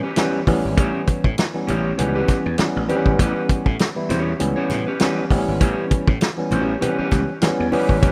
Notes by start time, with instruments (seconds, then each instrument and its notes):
0.03 clean electric guitar C#4 G4 B4
0.16 tine electric piano E3 G3 B3 C#4, clean electric guitar C#4 G4 B4, snare, closed hi-hat, high conga
0.47 slap bass A1, tine electric piano E3 G3 B3 C#4, kick, open hi-hat, high conga
0.65 slap bass G#1
0.77 slap bass A1, clean electric guitar C#4 G4 C#5, kick, closed hi-hat, muted conga
1.07 muted slap bass stroke, kick, closed hi-hat, muted conga
1.24 slap bass A2, kick
1.38 snare, closed hi-hat, high conga
1.54 tine electric piano E3 G3 B3 C#4
1.67 slap bass A1, clean electric guitar C#4 G4 C#5, closed hi-hat, low conga
1.98 slap bass C#2, tine electric piano E3 G3 B3 C#4, clean electric guitar C#4 G4 B4, closed hi-hat, muted conga, low conga
2.15 clean electric guitar C#4 G4 B4
2.28 kick, snare, closed hi-hat, muted conga
2.46 slap bass E2
2.58 tine electric piano E3 G3 B3 C#4, muted slap bass stroke, snare, closed hi-hat, high conga
2.76 slap bass A1
2.88 tine electric piano E3 G3 B3 C4, clean electric guitar C#4 G4 B4, closed hi-hat, high conga
2.96 tine electric piano C#4
3.06 slap bass G#1, kick
3.19 slap bass A1, clean electric guitar C#4 G4 B4, kick, closed hi-hat, muted conga
3.49 muted slap bass stroke, kick, closed hi-hat, muted conga
3.66 slap bass A2, kick
3.79 snare, closed hi-hat, high conga
3.96 tine electric piano E3 G3 B3 E4
4.09 slap bass E2, clean electric guitar C#4 G4 C#5, snare, closed hi-hat, low conga
4.39 slap bass C#2, tine electric piano E3 G3 B3 C#4, closed hi-hat, muted conga
4.56 clean electric guitar C#4 G4 C#5
4.70 slap bass A2, snare, closed hi-hat, muted conga, low conga
4.87 clean electric guitar C#4 G4 B4
5.00 tine electric piano E3 G3 B3 C#4, clean electric guitar C#4 G4 B4, snare, closed hi-hat, high conga
5.30 slap bass A1, tine electric piano E3 G3 B3 C4, kick, open hi-hat, high conga
5.38 tine electric piano C#4
5.48 slap bass G#1
5.60 slap bass A1, clean electric guitar C#4 G4 C#5, kick, closed hi-hat, muted conga
5.91 muted slap bass stroke, kick, closed hi-hat, muted conga
6.08 slap bass A2, kick
6.21 snare, closed hi-hat, high conga
6.38 tine electric piano E3 G3 B3 C#4
6.51 slap bass A1, clean electric guitar C#4 G4 C#5, closed hi-hat, low conga
6.81 tine electric piano E3 G3 B3 C4, clean electric guitar C#4 G4 B4, closed hi-hat, low conga
6.89 tine electric piano C#4
6.98 clean electric guitar C#4 G4 B4, muted slap bass stroke
7.11 slap bass C#2, kick, snare, closed hi-hat, muted conga
7.41 tine electric piano E3 G3 B3 C#4, muted slap bass stroke, snare, closed hi-hat, high conga
7.60 slap bass E2
7.72 tine electric piano E3 G3 B3 C#4, clean electric guitar C#4 G4 B4, open hi-hat, high conga
7.89 slap bass G#1, kick
8.02 slap bass A1, clean electric guitar C#4 G4 B4, kick, closed hi-hat, muted conga